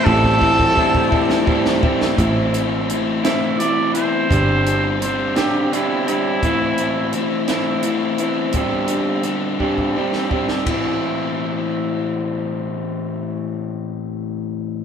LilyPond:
<<
  \new Staff \with { instrumentName = "String machine" } { \time 6/8 \key a \minor \tempo 4. = 56 <a' e'' g'' a''>2. | r2. | r2. | r2. |
r2. | r2. | r2. | }
  \new Staff \with { instrumentName = "Trumpet" } { \time 6/8 \key a \minor a'2~ a'8 r8 | r4. e''8 d''8 c''8~ | c''4 c''8 g'8 e'8 e'8~ | e'4. r4. |
r2. | r2. | r2. | }
  \new Staff \with { instrumentName = "Clean electric guitar" } { \time 6/8 \key a \minor <a, e g c' e'>8 <g c' e'>8 <e g c' e'>8 <g c' e'>8 <e g c' e'>8 <g c' e'>8 | <a, e c' e'>4. <a, e c' e'>8 <e c' e'>8 <b c' e'>8 | <g, d g c' d' g'>4. <g, d g c' d' g'>8 <g c' d' g'>8 <g c' d' g'>8 | <a, e c' e'>4. <a, e c' e'>8 <e c' e'>8 <b c' e'>8 |
<g, d g c' d' g'>4. <g, d g c' d' g'>8 <g c' d' g'>8 <g c' d' g'>8 | <a, e c' e'>2.~ | <a, e c' e'>2. | }
  \new Staff \with { instrumentName = "Overdriven electric guitar" } { \time 6/8 \key a \minor <a, e a c' e'>8 <a c' e'>8 <e a c' e'>8 <a c' e'>8 <e a c' e'>8 <a c' e'>8 | <a, e a c' e'>8 <a c' e'>8 <e a c' e'>8 <a c' e'>8 <e a c' e'>8 <a c' e'>8 | <g, d g c' d'>8 <g c' d'>8 <d g c' d'>8 <g c' d'>8 <d g c' d'>8 <g c' d'>8 | <a, e a c' e'>8 <a c' e'>8 <e a c' e'>8 <a c' e'>8 <e a c' e'>8 <a c' e'>8 |
<g, d g c' d'>8 <g c' d'>8 <d g c' d'>8 <g c' d'>8 <d g c' d'>8 <g c' d'>8 | <a, e a c' e'>2.~ | <a, e a c' e'>2. | }
  \new Staff \with { instrumentName = "Picked electric bass" } { \clef bass \time 6/8 \key a \minor a,,2 r4 | a,,2 r4 | g,,2 r4 | r2. |
r2. | r2. | r2. | }
  \new DrumStaff \with { instrumentName = "Drums" } \drummode { \time 6/8 bd16 bd16 bd16 bd16 bd16 bd16 bd16 sn16 bd16 sn16 bd16 sn16 | <hh bd>8 hh8 hh8 <hh sn>8 hh8 hh8 | <hh bd>8 hh8 hh8 <hh sn>8 hh8 hh8 | <hh bd>8 hh8 hh8 <hh sn>8 hh8 hh8 |
<hh bd>8 hh8 hh8 bd16 bd8 sn16 bd16 sn16 | <bd rb>4. r4. | r4. r4. | }
>>